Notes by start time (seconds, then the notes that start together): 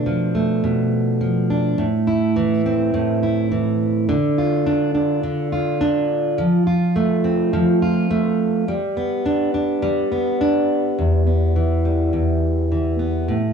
Already playing: B2 A3 D4
0.06 F3
0.35 A3
0.64 B2
1.21 F3
1.50 D4
1.78 A2
2.07 E4
2.36 E3
2.66 C4
2.94 A2
3.23 E4
3.51 E3
4.09 D3
4.38 F4
4.67 D4
4.95 D4
5.23 D3
5.52 F4
5.81 D4
6.38 F3
6.67 F4
6.96 A3
7.24 C4
7.53 F3
7.82 F4
8.11 A3
8.68 G3
8.97 B3
9.26 D4
9.54 D4
9.82 G3
10.12 B3
10.41 D4
10.99 E2
11.27 B3
11.56 E3
11.85 G3
12.13 E2
12.72 E3
12.99 B3
13.28 A2